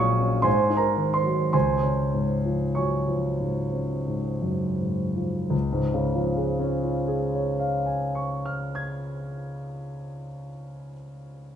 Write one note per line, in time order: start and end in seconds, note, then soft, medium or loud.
0.00 0.42 A#1 medium
0.00 0.48 A#2 medium
0.00 0.48 F#3 soft
0.00 0.48 G#3 soft
0.00 0.21 C#4 soft
0.00 0.42 C#5 medium
0.00 0.48 D#5 medium
0.00 0.49 F5 medium
0.00 0.48 C#6 medium
0.00 0.48 D#6 medium
0.00 0.48 F6 loud
0.21 0.45 C#4 soft
0.42 1.49 G#2 medium
0.42 0.76 C5 medium
0.42 0.76 G#5 medium
0.42 0.78 C6 medium
0.70 1.13 D#4 soft
0.77 1.12 A#4 medium
0.77 1.14 A#5 medium
0.97 1.42 D#3 soft
1.14 1.51 C5 soft
1.14 1.51 C6 medium
1.23 1.53 F#3 soft
1.53 5.48 C#2 soft
1.53 2.72 C5 medium
1.53 2.72 G#5 soft
1.53 2.76 C6 medium
1.83 2.32 C#4 soft
2.14 2.64 G#2 soft
2.45 2.96 F3 soft
2.75 3.08 F#3 soft
2.75 4.78 C#5 soft
2.75 4.78 G#5 soft
2.75 4.81 C#6 soft
3.08 3.61 F3 soft
3.40 3.95 G#2 soft
3.73 4.30 C#4 soft
4.08 4.66 G#2 soft
4.42 4.81 F#2 soft
4.81 5.39 G#2 soft
5.16 5.51 F3 soft
5.50 10.05 C#2 soft
5.72 10.27 G#2 soft
5.94 10.49 C#3 soft
6.15 10.70 F3 soft
6.37 10.92 G#3 soft
6.60 10.93 C#4 soft
6.83 10.93 F4 soft
7.07 10.92 G#4 soft
7.35 10.93 C#5 soft
7.59 10.92 F5 soft
7.86 10.92 G#5 soft
8.15 10.93 C#6 soft
8.46 10.93 F6 soft
8.75 10.93 G#6 soft